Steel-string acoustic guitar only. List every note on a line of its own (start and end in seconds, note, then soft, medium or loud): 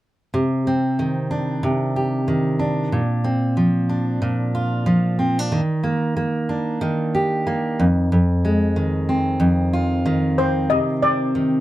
0.34 1.62 C3 medium
0.67 3.24 C4 soft
0.99 2.27 D#3 soft
1.31 2.59 D4 soft
1.63 2.92 C3 medium
1.96 3.01 G4 soft
2.28 3.00 D#3 medium
2.59 3.27 D4 soft
2.92 4.20 A#2 medium
3.24 5.18 C4 soft
3.57 4.85 F3 soft
3.89 5.18 D4 soft
4.22 5.59 A#2 medium
4.55 5.60 F4 medium
4.86 5.51 F3 medium
5.19 5.39 C4 soft
5.39 5.60 D4 soft
5.52 6.81 D#3 medium
5.84 6.15 A#3 soft
6.17 7.45 A#3 medium
6.49 7.86 D4 soft
6.81 8.15 D#3 medium
7.15 7.86 G4 medium
7.47 7.86 A#3 medium
7.80 8.11 F2 medium
8.12 9.38 F2 medium
8.45 10.78 G#3 soft
8.76 10.05 D#3 soft
9.09 10.38 C4 soft
9.40 10.77 F2 medium
9.73 10.77 F4 medium
10.06 11.35 D#3 medium
10.38 11.03 C4 medium
10.70 11.60 C3 medium
11.03 11.60 C4 soft
11.35 11.60 D#3 medium